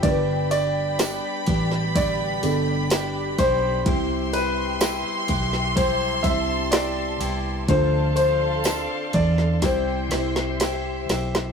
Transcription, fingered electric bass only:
X:1
M:4/4
L:1/16
Q:1/4=62
K:C
V:1 name="Fingered electric bass" clef=bass
G,,,4- G,,, z A,,,4 G,,,4 B,,,2 | C,,4- C,, z B,,,4 C,,4 C,,2 | D,,4- D,, z E,,2 C,,2 C,,4 B,,,2 |]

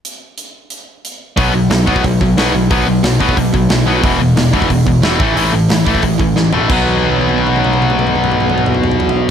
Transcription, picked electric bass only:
X:1
M:4/4
L:1/8
Q:1/4=180
K:Amix
V:1 name="Picked electric bass" clef=bass
z8 | B,,, B,,, B,,, B,,, B,,, B,,, B,,, B,,, | B,,, B,,, B,,, B,,, B,,, B,,, B,,, B,,, | E,,, E,,, E,,, E,,, E,,, E,,, E,,, A,,, |
A,,, A,,, A,,, A,,, A,,, A,,, A,,, A,,, | B,,,8- | B,,,8 |]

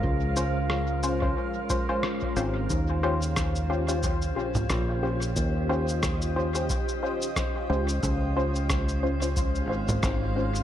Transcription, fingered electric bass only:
X:1
M:4/4
L:1/8
Q:"Swing 16ths" 1/4=90
K:Ebmix
V:1 name="Fingered electric bass" clef=bass
D,,4 z3 A,,, | E,,4- E,, B,,, B,,,2 | E,,4 z3 D,, | D,,4- D,, A,,, A,,,2 |]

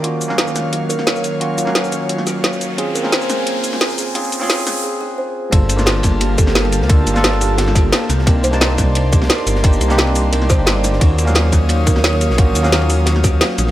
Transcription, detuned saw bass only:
X:1
M:4/4
L:1/16
Q:1/4=175
K:Eblyd
V:1 name="Detuned saw bass" clef=bass
z16 | z16 | z16 | z16 |
G,,,12- G,,,3 D,,- | D,,2 G,,,8- G,,,2 z2 C,,2- | C,,2 C,,8- C,,2 z2 G,,,2- | G,,,2 C,,6 C,,3 G,,,4- G,,, |
E,,12- E,,3 B,,,- | B,,,2 E,,8- E,,2 z2 B,,,2 |]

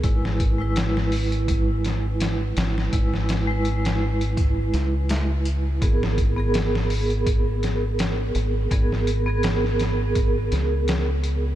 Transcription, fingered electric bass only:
X:1
M:4/4
L:1/8
Q:"Swing 16ths" 1/4=83
K:G#m
V:1 name="Fingered electric bass" clef=bass
G,,,6- G,,, G,,, | G,,,4- G,,, C,,3 | G,,,6- G,,, G,,, | G,,,4- G,,, C,,3 |]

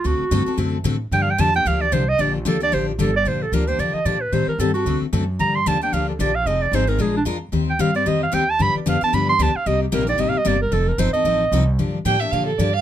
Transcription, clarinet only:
X:1
M:4/4
L:1/16
Q:"Swing" 1/4=225
K:Gm
V:1 name="Clarinet"
^F8 z8 | (3g2 f2 g2 a2 g2 f2 d2 c2 e2 | d2 F2 A2 d2 c2 F2 A2 d2 | [K:Bb] c2 A2 B2 c2 d2 e2 d2 _c2 |
c2 B2 A2 _G4 z6 | b2 c'2 a2 g2 f2 A2 d2 f2 | e2 d2 c2 B2 _A2 D2 z4 | z2 g2 f2 d2 e2 f2 g2 a2 |
=b2 d2 f2 a2 b2 c'2 a2 f2 | e2 G2 B2 d2 (3e2 f2 e2 d2 B2 | A2 B2 c2 e8- e z | [K:Gm] z16 |]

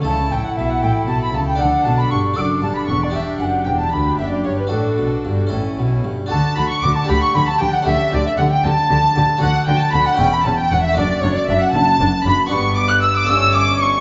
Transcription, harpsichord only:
X:1
M:6/8
L:1/8
Q:3/8=77
K:D
V:1 name="Harpsichord"
[A,Ae]6 | [DAd]3 [DAd]3 | [DGd]6 | [DFA]3 [CEA]3 |
[DFA]3 [DG]3 | [CGA]6 | [DFA]3 [CEc]3 | [A,Dd]6 |
[B,Dd]3 [A,CA]3 |]
V:2 name="Harpsichord" clef=bass
C, A,, B,, A,, B,, C, | D, B,, G,, F,, G,, E,, | G,, F,, E,, D,, F,, G,, | A,, B,, G,, A,, B,, G,, |
D, D, D, D, D, D, | D, D, D, D, D, D, | D, D, D, E,, E,, E,, | F,, F,, F,, F,, F,, F,, |
G,,3 G,,3 |]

